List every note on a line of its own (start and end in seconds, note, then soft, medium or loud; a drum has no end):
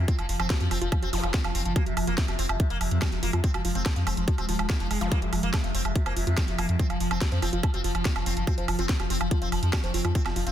0.00 10.52 F3 medium
0.00 1.78 F4 medium
0.08 0.14 C4 loud
0.08 0.16 F4 medium
0.08 kick loud
0.08 closed hi-hat medium
0.19 0.25 F1 medium
0.19 0.25 F3 medium
0.19 0.24 F5 loud
0.19 closed hi-hat soft
0.19 high woodblock soft
0.29 0.36 F1 loud
0.29 0.35 F3 medium
0.29 open hi-hat loud
0.40 0.46 F1 medium
0.40 0.46 C4 loud
0.40 closed hi-hat soft
0.40 high woodblock medium
0.50 0.56 F3 medium
0.50 0.55 F#4 loud
0.50 kick loud
0.50 snare loud
0.50 closed hi-hat medium
0.61 0.67 F2 medium
0.61 0.67 F3 medium
0.61 0.66 F#4 medium
0.61 closed hi-hat soft
0.71 0.78 F1 loud
0.71 0.77 C4 loud
0.71 0.76 F4 medium
0.71 open hi-hat loud
0.71 high woodblock soft
0.82 0.88 F1 medium
0.82 0.88 F3 medium
0.82 0.87 F4 loud
0.82 closed hi-hat soft
0.92 0.98 F3 medium
0.92 kick loud
0.92 closed hi-hat medium
0.92 high woodblock medium
1.02 1.09 F1 medium
1.02 1.09 C4 loud
1.02 1.08 F#4 medium
1.02 closed hi-hat soft
1.13 1.20 F1 loud
1.13 1.19 F3 medium
1.13 1.16 F4 medium
1.13 open hi-hat loud
1.13 zap medium
1.23 1.30 F1 medium
1.23 1.30 F3 medium
1.23 1.27 F5 medium
1.23 closed hi-hat soft
1.23 high woodblock soft
1.34 1.40 C#4 medium
1.34 1.42 F4 medium
1.34 kick loud
1.34 snare loud
1.34 closed hi-hat medium
1.44 1.51 F1 medium
1.44 1.51 F3 medium
1.44 1.50 F5 loud
1.44 closed hi-hat soft
1.44 high woodblock medium
1.55 1.62 F1 loud
1.55 1.61 C4 medium
1.55 open hi-hat loud
1.65 1.72 F#1 medium
1.65 1.72 F3 medium
1.65 closed hi-hat soft
1.76 5.14 G#3 medium
1.76 1.82 A#3 loud
1.76 1.81 F#4 loud
1.76 kick loud
1.76 closed hi-hat medium
1.76 high woodblock soft
1.86 1.93 F1 medium
1.86 1.93 C3 medium
1.86 1.92 F#4 medium
1.86 closed hi-hat soft
1.97 2.04 F1 loud
1.97 2.03 C3 medium
1.97 2.02 F4 medium
1.97 open hi-hat loud
1.97 high woodblock medium
2.07 2.14 F1 medium
2.07 2.14 A#3 medium
2.07 2.13 F4 loud
2.07 closed hi-hat soft
2.18 2.24 C3 medium
2.18 kick loud
2.18 snare loud
2.18 closed hi-hat medium
2.28 2.35 F1 medium
2.28 2.35 C3 medium
2.28 2.34 F#4 medium
2.28 closed hi-hat soft
2.28 high woodblock soft
2.39 2.46 F1 loud
2.39 2.45 C4 medium
2.39 2.42 F4 medium
2.39 open hi-hat loud
2.49 2.56 F1 medium
2.49 2.56 C3 medium
2.49 2.53 F5 medium
2.49 closed hi-hat soft
2.49 high woodblock medium
2.60 2.66 C3 medium
2.60 2.68 F4 medium
2.60 kick loud
2.60 closed hi-hat medium
2.70 2.77 F1 medium
2.70 2.77 A#3 loud
2.70 2.76 F5 loud
2.70 closed hi-hat soft
2.81 2.88 F1 loud
2.81 2.87 C3 medium
2.81 open hi-hat loud
2.81 high woodblock soft
2.91 2.98 F2 medium
2.91 2.98 C3 medium
2.91 closed hi-hat soft
3.02 3.07 F#4 loud
3.02 kick loud
3.02 snare loud
3.02 closed hi-hat medium
3.02 high woodblock medium
3.12 3.19 F1 medium
3.12 3.19 C3 medium
3.12 3.18 F#4 medium
3.12 closed hi-hat soft
3.23 3.29 F1 loud
3.23 3.29 A#3 medium
3.23 3.28 F4 medium
3.23 open hi-hat loud
3.33 3.40 F2 medium
3.33 3.40 C3 medium
3.33 3.39 F4 loud
3.33 closed hi-hat soft
3.33 high woodblock soft
3.44 3.50 C4 loud
3.44 3.49 F4 medium
3.44 kick loud
3.44 closed hi-hat medium
3.54 3.61 F1 medium
3.54 3.61 F3 medium
3.54 3.60 F#4 medium
3.54 closed hi-hat soft
3.54 high woodblock medium
3.65 3.71 F1 loud
3.65 3.71 F3 medium
3.65 3.68 F4 medium
3.65 open hi-hat loud
3.75 3.82 F1 medium
3.75 3.82 C4 loud
3.75 3.79 F5 medium
3.75 closed hi-hat soft
3.86 3.92 F3 medium
3.86 3.94 F4 medium
3.86 kick loud
3.86 snare loud
3.86 closed hi-hat medium
3.86 high woodblock soft
3.96 4.03 F2 medium
3.96 4.03 F3 medium
3.96 4.02 F5 loud
3.96 closed hi-hat soft
4.07 4.13 F1 loud
4.07 4.13 C4 medium
4.07 open hi-hat loud
4.07 high woodblock medium
4.17 4.24 F1 loud
4.17 4.24 F3 medium
4.17 closed hi-hat soft
4.28 4.34 F3 medium
4.28 4.33 F#4 loud
4.28 kick loud
4.28 closed hi-hat medium
4.38 4.45 D#1 medium
4.38 4.45 C4 medium
4.38 4.44 F#4 medium
4.38 closed hi-hat soft
4.38 high woodblock soft
4.49 4.55 D#1 loud
4.49 4.55 F3 medium
4.49 4.54 F4 loud
4.49 open hi-hat loud
4.59 4.66 D#1 medium
4.59 4.66 F3 medium
4.59 4.65 F5 medium
4.59 closed hi-hat soft
4.59 high woodblock medium
4.70 4.76 A#3 medium
4.70 4.78 F4 loud
4.70 kick loud
4.70 snare loud
4.70 closed hi-hat medium
4.80 4.87 F1 medium
4.80 4.87 F3 medium
4.80 4.83 F4 medium
4.80 closed hi-hat soft
4.91 4.97 F1 loud
4.91 4.97 G#3 medium
4.91 4.99 F#5 medium
4.91 open hi-hat loud
4.91 high woodblock soft
5.01 5.08 F1 medium
5.01 5.07 F3 medium
5.01 5.09 F5 loud
5.01 closed hi-hat soft
5.01 zap medium
5.12 5.18 A#3 loud
5.12 5.17 F4 medium
5.12 8.49 F4 medium
5.12 kick loud
5.12 closed hi-hat medium
5.22 5.29 F1 medium
5.22 5.28 C3 medium
5.22 5.27 F#4 medium
5.22 closed hi-hat soft
5.33 5.39 F1 loud
5.33 5.39 C3 medium
5.33 5.36 F4 medium
5.33 open hi-hat loud
5.33 high woodblock soft
5.43 5.50 F1 medium
5.43 5.49 A#3 medium
5.43 5.46 F5 medium
5.43 closed hi-hat soft
5.54 5.60 C3 medium
5.54 5.62 F4 medium
5.54 kick loud
5.54 snare loud
5.54 closed hi-hat medium
5.54 high woodblock medium
5.64 5.71 F1 medium
5.64 5.70 C3 medium
5.64 5.69 F5 loud
5.64 closed hi-hat soft
5.75 5.81 F1 loud
5.75 5.81 C4 loud
5.75 open hi-hat loud
5.85 5.92 F1 medium
5.85 5.91 C3 medium
5.85 closed hi-hat soft
5.85 high woodblock soft
5.95 6.02 C3 medium
5.95 6.01 F#4 loud
5.95 kick loud
5.95 closed hi-hat medium
6.06 6.13 F1 medium
6.06 6.12 A#3 medium
6.06 6.11 C5 loud
6.06 closed hi-hat soft
6.06 high woodblock medium
6.16 6.23 F1 loud
6.16 6.23 C3 medium
6.16 6.22 F4 medium
6.16 open hi-hat loud
6.27 6.34 F2 medium
6.27 6.33 C3 medium
6.27 6.32 F4 loud
6.27 closed hi-hat soft
6.38 6.43 F4 medium
6.38 kick loud
6.38 snare loud
6.38 closed hi-hat medium
6.38 high woodblock soft
6.48 6.55 F1 medium
6.48 6.54 C3 medium
6.48 6.53 F#4 medium
6.48 closed hi-hat soft
6.58 6.65 F1 loud
6.58 6.65 A#3 medium
6.58 6.62 F4 medium
6.58 open hi-hat loud
6.58 high woodblock medium
6.69 6.76 F2 medium
6.69 6.75 C3 medium
6.69 6.72 F5 medium
6.69 closed hi-hat soft
6.79 6.86 C4 loud
6.79 6.88 F4 medium
6.79 kick loud
6.79 closed hi-hat medium
6.90 6.97 F1 medium
6.90 6.96 F3 medium
6.90 6.95 F5 loud
6.90 closed hi-hat soft
6.90 high woodblock soft
7.00 7.07 F1 loud
7.00 7.07 F3 medium
7.00 open hi-hat loud
7.11 7.18 F1 medium
7.11 7.17 C4 loud
7.11 closed hi-hat soft
7.11 high woodblock medium
7.21 7.28 F3 medium
7.21 7.27 F#4 loud
7.21 kick loud
7.21 snare loud
7.21 closed hi-hat medium
7.32 7.39 F2 medium
7.32 7.38 F3 medium
7.32 7.37 C5 loud
7.32 closed hi-hat soft
7.42 7.49 F1 loud
7.42 7.49 C4 medium
7.42 7.48 F4 medium
7.42 open hi-hat loud
7.42 high woodblock soft
7.53 7.60 F1 loud
7.53 7.59 F3 medium
7.53 7.58 F4 loud
7.53 closed hi-hat soft
7.63 kick loud
7.63 closed hi-hat medium
7.63 high woodblock medium
7.74 7.81 F1 medium
7.74 7.80 C4 loud
7.74 7.79 F#4 medium
7.74 closed hi-hat soft
7.84 7.91 F1 loud
7.84 7.91 F3 medium
7.84 7.88 F4 medium
7.84 open hi-hat loud
7.95 8.02 F1 medium
7.95 8.01 F3 medium
7.95 7.98 F5 medium
7.95 closed hi-hat soft
7.95 high woodblock soft
8.05 8.12 C#4 medium
8.05 8.13 F4 medium
8.05 kick loud
8.05 snare loud
8.05 closed hi-hat medium
8.16 8.22 F1 medium
8.16 8.22 F3 medium
8.16 8.21 F5 loud
8.16 closed hi-hat soft
8.16 high woodblock medium
8.26 8.33 F1 loud
8.26 8.33 C4 medium
8.26 open hi-hat loud
8.37 8.43 F#1 medium
8.37 8.43 F3 medium
8.37 closed hi-hat soft
8.47 8.54 C4 loud
8.47 10.52 D#4 medium
8.47 8.53 F#4 loud
8.47 kick loud
8.47 closed hi-hat medium
8.47 high woodblock soft
8.58 8.64 F1 medium
8.58 8.64 F3 medium
8.58 8.63 C5 loud
8.58 closed hi-hat soft
8.68 8.75 F1 loud
8.68 8.75 F3 medium
8.68 8.74 F4 medium
8.68 open hi-hat loud
8.68 high woodblock medium
8.79 8.85 F1 medium
8.79 8.85 C4 loud
8.79 8.84 F4 loud
8.79 closed hi-hat soft
8.89 8.96 F3 medium
8.89 kick loud
8.89 snare loud
8.89 closed hi-hat medium
9.00 9.06 F1 medium
9.00 9.06 F3 medium
9.00 9.05 F#4 medium
9.00 closed hi-hat soft
9.00 high woodblock soft
9.10 9.17 F1 loud
9.10 9.17 C4 medium
9.10 9.13 F4 medium
9.10 open hi-hat loud
9.21 9.27 F1 medium
9.21 9.27 F3 medium
9.21 9.24 F5 medium
9.21 closed hi-hat soft
9.21 high woodblock medium
9.31 9.38 F3 medium
9.31 9.39 F4 medium
9.31 kick loud
9.31 closed hi-hat medium
9.42 9.48 F1 medium
9.42 9.48 C4 loud
9.42 9.47 F5 loud
9.42 closed hi-hat soft
9.52 9.59 F1 loud
9.52 9.59 F3 medium
9.52 open hi-hat loud
9.52 high woodblock soft
9.63 9.69 F2 loud
9.63 9.69 F3 medium
9.63 closed hi-hat soft
9.73 9.79 C#4 medium
9.73 9.79 F#4 loud
9.73 kick loud
9.73 snare loud
9.73 closed hi-hat medium
9.73 high woodblock medium
9.84 9.90 F1 medium
9.84 9.90 F3 medium
9.84 9.89 C5 loud
9.84 closed hi-hat soft
9.94 10.01 F1 loud
9.94 10.00 C4 medium
9.94 10.00 F4 medium
9.94 open hi-hat loud
10.05 10.11 F2 medium
10.05 10.11 F3 medium
10.05 10.10 F4 loud
10.05 closed hi-hat soft
10.05 high woodblock soft
10.15 10.21 C4 loud
10.15 10.21 F4 medium
10.15 kick loud
10.15 closed hi-hat medium
10.26 10.32 F1 medium
10.26 10.32 F3 medium
10.26 10.31 F#4 medium
10.26 snare soft
10.26 closed hi-hat soft
10.26 high woodblock medium
10.36 10.43 F1 loud
10.36 10.42 F3 medium
10.36 10.39 F4 medium
10.36 open hi-hat loud
10.47 10.52 F1 medium
10.47 10.52 C4 medium
10.47 10.50 F5 medium
10.47 closed hi-hat soft